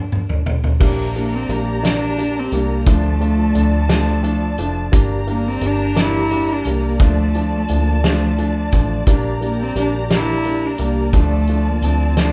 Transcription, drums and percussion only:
0.12 mid tom medium
0.29 floor tom medium
0.46 floor tom medium
0.64 floor tom medium
0.81 kick loud
0.81 crash medium
1.15 closed hi-hat soft
1.49 closed hi-hat medium
1.85 snare loud
1.85 closed hi-hat medium
2.19 closed hi-hat medium
2.52 closed hi-hat medium
2.87 kick loud
2.87 closed hi-hat medium
3.21 closed hi-hat soft
3.55 closed hi-hat medium
3.89 snare loud
3.89 closed hi-hat medium
4.24 closed hi-hat soft
4.58 closed hi-hat medium
4.93 kick loud
4.93 closed hi-hat medium
5.27 closed hi-hat soft
5.61 closed hi-hat medium
5.97 snare loud
5.97 closed hi-hat medium
6.31 closed hi-hat medium
6.65 closed hi-hat medium
7.00 kick loud
7.00 closed hi-hat medium
7.34 closed hi-hat soft
7.68 closed hi-hat medium
8.04 snare loud
8.04 closed hi-hat medium
8.38 closed hi-hat soft
8.72 kick medium
8.72 closed hi-hat medium
9.07 kick loud
9.07 closed hi-hat medium
9.42 closed hi-hat soft
9.76 closed hi-hat medium
10.10 snare loud
10.10 closed hi-hat medium
10.44 closed hi-hat soft
10.78 closed hi-hat medium
11.13 kick loud
11.13 closed hi-hat medium
11.47 closed hi-hat soft
11.82 closed hi-hat medium
12.17 snare loud
12.17 closed hi-hat medium

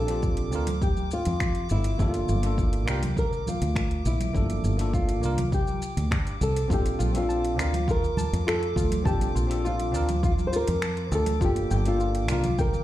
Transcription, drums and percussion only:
0.08 closed hi-hat medium
0.08 shaker soft
0.23 kick loud
0.23 shaker soft
0.37 closed hi-hat soft
0.52 shaker medium
0.67 closed hi-hat medium
0.67 high conga medium
0.67 low conga medium
0.67 shaker soft
0.82 kick loud
0.82 shaker soft
0.96 high conga soft
0.96 shaker soft
1.11 shaker medium
1.25 closed hi-hat medium
1.25 shaker soft
1.40 finger snap medium
1.40 kick loud
1.40 shaker soft
1.55 closed hi-hat soft
1.69 shaker medium
1.84 closed hi-hat medium
1.84 shaker soft
1.99 kick loud
1.99 shaker soft
2.14 closed hi-hat soft
2.14 shaker soft
2.29 high conga medium
2.29 shaker medium
2.43 closed hi-hat medium
2.43 shaker soft
2.58 kick loud
2.58 shaker soft
2.73 closed hi-hat soft
2.88 finger snap medium
2.88 shaker medium
3.03 closed hi-hat medium
3.03 high conga medium
3.03 low conga medium
3.03 shaker soft
3.17 kick medium
3.17 shaker soft
3.32 low conga medium
3.32 shaker soft
3.47 high conga medium
3.47 low conga medium
3.47 shaker medium
3.62 closed hi-hat medium
3.62 shaker soft
3.76 finger snap medium
3.76 kick loud
3.76 shaker soft
3.91 closed hi-hat soft
4.06 shaker medium
4.20 closed hi-hat medium
4.20 high conga medium
4.20 shaker soft
4.35 kick loud
4.35 shaker soft
4.50 closed hi-hat soft
4.50 shaker soft
4.64 high conga medium
4.64 shaker medium
4.79 closed hi-hat medium
4.79 shaker soft
4.93 kick medium
4.93 shaker soft
5.09 closed hi-hat soft
5.09 shaker soft
5.23 shaker medium
5.38 closed hi-hat medium
5.38 high conga medium
5.38 low conga medium
5.38 shaker soft
5.52 kick loud
5.52 shaker soft
5.67 high conga medium
5.67 shaker soft
5.82 shaker medium
5.97 closed hi-hat medium
5.97 shaker soft
6.11 finger snap medium
6.11 kick loud
6.11 shaker soft
6.27 closed hi-hat soft
6.27 shaker soft
6.41 shaker medium
6.56 closed hi-hat medium
6.56 shaker soft
6.70 kick loud
6.70 muted conga medium
6.70 shaker soft
6.86 closed hi-hat soft
6.86 shaker soft
7.00 high conga medium
7.00 shaker medium
7.14 closed hi-hat medium
7.14 muted conga medium
7.14 shaker soft
7.30 shaker soft
7.45 closed hi-hat soft
7.59 finger snap medium
7.59 shaker medium
7.73 closed hi-hat medium
7.73 muted conga medium
7.73 high conga medium
7.73 low conga medium
7.73 shaker soft
7.88 kick loud
7.88 shaker soft
8.03 low conga medium
8.03 shaker soft
8.17 muted conga medium
8.17 high conga medium
8.17 low conga medium
8.17 shaker medium
8.34 closed hi-hat medium
8.34 shaker soft
8.48 finger snap medium
8.48 shaker soft
8.63 closed hi-hat soft
8.76 kick loud
8.76 muted conga medium
8.76 shaker medium
8.91 closed hi-hat medium
8.91 high conga loud
8.91 shaker soft
9.05 kick loud
9.05 shaker soft
9.21 closed hi-hat soft
9.21 muted conga medium
9.21 shaker soft
9.36 shaker medium
9.51 closed hi-hat medium
9.51 shaker soft
9.66 shaker soft
9.80 closed hi-hat soft
9.80 muted conga soft
9.94 shaker medium
10.09 closed hi-hat medium
10.09 high conga medium
10.09 low conga medium
10.09 shaker soft
10.23 kick loud
10.23 muted conga medium
10.23 shaker soft
10.39 high conga medium
10.39 shaker soft
10.53 shaker medium
10.68 closed hi-hat medium
10.68 shaker soft
10.82 finger snap medium
10.82 muted conga soft
10.82 shaker soft
10.97 closed hi-hat soft
11.12 shaker medium
11.26 closed hi-hat medium
11.26 muted conga medium
11.26 shaker soft
11.41 kick loud
11.41 shaker soft
11.56 closed hi-hat soft
11.56 shaker soft
11.71 high conga medium
11.71 shaker medium
11.86 closed hi-hat medium
11.86 muted conga medium
11.86 shaker soft
12.00 shaker soft
12.15 closed hi-hat soft
12.28 finger snap medium
12.28 muted conga medium
12.28 shaker medium
12.44 closed hi-hat medium
12.44 high conga medium
12.44 low conga medium
12.44 shaker soft
12.59 kick loud
12.59 shaker soft
12.74 low conga medium
12.74 shaker soft

